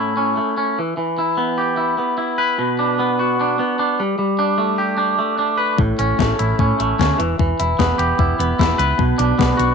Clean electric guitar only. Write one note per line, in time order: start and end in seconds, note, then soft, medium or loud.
0.00 0.38 A2 medium
0.00 0.36 A3 medium
0.00 0.16 C#4 medium
0.00 0.78 E4 medium
0.17 0.56 C#4 medium
0.37 0.78 A3 medium
0.57 0.78 C#4 medium
0.79 0.96 E3 medium
0.97 1.98 E3 medium
1.19 1.76 E4 medium
1.37 1.98 B3 medium
1.58 2.58 G4 medium
1.77 2.16 E4 medium
1.98 2.99 B3 medium
2.18 2.58 E4 medium
2.38 4.61 B4 medium
2.58 3.59 B2 medium
2.79 3.39 D4 medium
2.99 3.58 B3 medium
3.19 3.99 F#4 medium
3.41 3.78 D4 medium
3.59 3.99 B3 medium
3.79 3.99 D4 medium
4.00 4.17 G3 medium
4.19 5.19 G3 medium
4.39 4.96 D4 medium
4.58 5.17 A3 medium
4.78 5.79 G4 medium
4.98 5.37 D4 medium
5.19 5.79 A3 medium
5.39 5.79 D4 medium
5.58 5.78 B4 medium
5.78 6.79 A2 medium
5.99 6.58 C#4 medium
6.19 6.78 A3 medium
6.39 7.19 E4 medium
6.60 6.98 C#4 medium
6.80 7.19 A3 medium
6.99 7.19 C#4 medium
7.18 7.38 E3 medium
7.39 8.39 E3 medium
7.59 8.18 E4 medium
7.79 8.39 B3 medium
7.98 8.99 G4 medium
8.19 8.58 E4 medium
8.39 9.38 B3 medium
8.59 8.99 E4 medium
8.78 9.74 B4 medium
8.98 9.74 B2 medium
9.18 9.74 D4 medium
9.39 9.74 B3 medium
9.57 9.74 F#4 medium